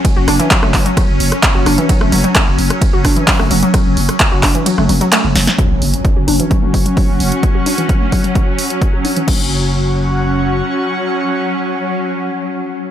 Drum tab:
CC |----------------|----------------|----------------|----------------|
RD |x---x---x---x---|x---x---x---x---|x---x---x---x---|----------------|
HH |x-oxx-oxx-oxx-ox|x-oxx-oxx-oxo-ox|x-oxx-oxx-oxx-ox|x-oxx-oxx-oxo-ox|
CP |----x-x-----x---|----x-------x---|----x-x-----x---|----------------|
SD |--r--r--r--r--r-|-r--r--r--r--r--|r--r--r--r--r-oo|----------------|
BD |o---o-o-o---o---|o---o---o-o-o---|o---o-o---------|o---o---o-o-o---|

CC |----------------|x---------------|----------------|
RD |----------------|----------------|----------------|
HH |x-oxx-oxx-oxx-ox|----------------|----------------|
CP |----------------|----------------|----------------|
SD |----------------|----------------|----------------|
BD |o---o-o-o---o---|o---------------|----------------|